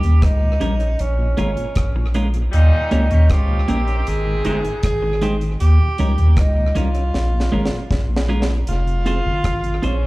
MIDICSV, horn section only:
0, 0, Header, 1, 2, 480
1, 0, Start_track
1, 0, Tempo, 768246
1, 1579, Time_signature, 4, 2, 24, 8
1, 6290, End_track
2, 0, Start_track
2, 0, Title_t, "Horn section"
2, 0, Program_c, 0, 61
2, 1575, Note_on_c, 0, 55, 99
2, 1576, Note_on_c, 0, 63, 107
2, 1577, Note_on_c, 0, 46, 100
2, 1917, Note_off_c, 0, 55, 0
2, 1917, Note_off_c, 0, 63, 0
2, 1918, Note_off_c, 0, 46, 0
2, 1941, Note_on_c, 0, 61, 78
2, 1941, Note_on_c, 0, 67, 82
2, 1942, Note_on_c, 0, 51, 74
2, 2036, Note_off_c, 0, 51, 0
2, 2036, Note_off_c, 0, 61, 0
2, 2036, Note_off_c, 0, 67, 0
2, 2060, Note_on_c, 0, 61, 77
2, 2061, Note_on_c, 0, 53, 78
2, 2061, Note_on_c, 0, 65, 93
2, 2251, Note_off_c, 0, 61, 0
2, 2252, Note_off_c, 0, 53, 0
2, 2252, Note_off_c, 0, 65, 0
2, 2298, Note_on_c, 0, 51, 89
2, 2300, Note_on_c, 0, 60, 86
2, 2300, Note_on_c, 0, 67, 87
2, 2753, Note_off_c, 0, 51, 0
2, 2754, Note_off_c, 0, 60, 0
2, 2754, Note_off_c, 0, 67, 0
2, 2779, Note_on_c, 0, 63, 86
2, 2780, Note_on_c, 0, 48, 78
2, 2780, Note_on_c, 0, 56, 73
2, 2876, Note_off_c, 0, 56, 0
2, 2876, Note_off_c, 0, 63, 0
2, 2877, Note_off_c, 0, 48, 0
2, 6290, End_track
0, 0, End_of_file